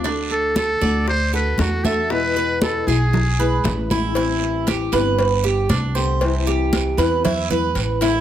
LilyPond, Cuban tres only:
\new Staff \with { instrumentName = "Cuban tres" } { \time 4/4 \key a \minor \tempo 4 = 117 d'4 a'8 d''4 a'4 e''8~ | e''8 b'4 gis'4 b'4 e'8 | e'4 g'8 b'4 g'8 d'8 c''8~ | c''8 g'4 b'8 e'8 b'4 e'8 | }